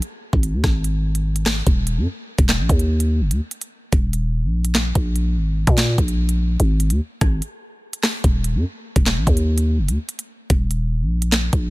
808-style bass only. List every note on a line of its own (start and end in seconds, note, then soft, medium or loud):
0.33 0.55 G#1 loud
0.54 0.63 D#2 loud
0.64 1.63 G#1 loud
1.67 1.99 D#1 loud
1.97 2.07 F#2 loud
2.38 2.61 D#1 loud
2.59 2.69 A#1 loud
2.69 3.22 D#2 loud
3.21 3.32 F1 loud
3.31 3.41 D#2 loud
3.93 4.45 D#1 loud
4.44 4.93 A#1 loud
4.95 5.38 A#1 loud
5.36 5.66 G#1 loud
5.67 5.97 A#2 loud
5.98 6.57 A#1 loud
6.60 6.92 G#1 loud
6.91 7.00 D#2 loud
7.21 7.41 G#1 loud
8.24 8.56 D#1 loud
8.55 8.65 F#2 loud
8.96 9.18 D#1 loud
9.17 9.26 A#1 loud
9.27 9.80 D#2 loud
9.78 9.90 F1 loud
9.89 9.98 D#2 loud
10.50 11.03 D#1 loud
11.02 11.50 A#1 loud
11.53 11.70 A#1 loud